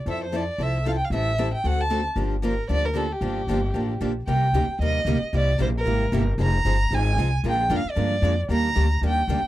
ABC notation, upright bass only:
X:1
M:4/4
L:1/8
Q:"Swing" 1/4=228
K:Gm
V:1 name="Upright bass" clef=bass
F,,4 C,,4 | A,,,4 D,,4 | G,,,4 D,,4 | G,,,2 G,,,2 A,,,2 B,,,2 |
[K:Cm] C,,2 D,, z E,,2 D,, z | C,,2 B,,,2 A,,,2 G,,,2 | F,,,2 G,,,2 A,,,2 C,,2 | B,,,2 F,, z G,,2 F,,2 |
E,,2 D,,2 E,,2 D,, z |]